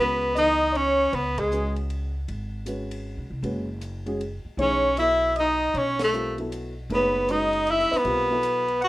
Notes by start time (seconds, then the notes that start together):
0.00 C#2 G#3 B3 C#4 F#4 B4
0.35 E3 B3 D#4 A4 D#5, hi-hat pedal, ride
0.73 C#4 C#5, ride
1.13 C#2 B3 B4, ride
1.38 G#3 G#4, kick, ride
1.50 G#3 C#4 F#4 B4, hi-hat pedal
1.76 ride
1.90 ride
2.28 G#1, ride
2.66 G#3 C#4 F#4 B4, hi-hat pedal, ride
2.91 ride
3.18 B1
3.30 C2
3.43 F#1 G#3 C#4 F#4 B4, ride
3.81 hi-hat pedal, ride
4.06 G#3 C#4 F#4 G#4, ride
4.21 ride
4.45 muted upright bass stroke
4.57 B1 E3 A3 C#4 D#4 G#4 C#5, ride
4.97 F#3 B3 E4 A4 E5, hi-hat pedal, ride
5.36 D#4 D#5, ride
5.74 B1 C#4 C#5, ride
5.99 A4, snare, ride
6.04 A3
6.13 G3 C4 F4 A#4, hi-hat pedal
6.38 F#3 B3 E4 A4, ride
6.52 hi-hat pedal, ride
6.90 F#1 A3 D#4 G#4 B4 C#5, ride
6.94 B3
7.28 G#3 C#4 D#4 F#4 B4 D#5, hi-hat pedal, ride
7.53 ride
7.67 E5, ride
7.71 E4
7.80 snare
7.92 B4, muted upright bass stroke, snare
7.98 B3
8.04 B1 G3 C4 F4 A#4, ride
8.31 F#3 B3 E4 A4
8.43 hi-hat pedal, ride
8.68 ride
8.81 F#4 F#5, ride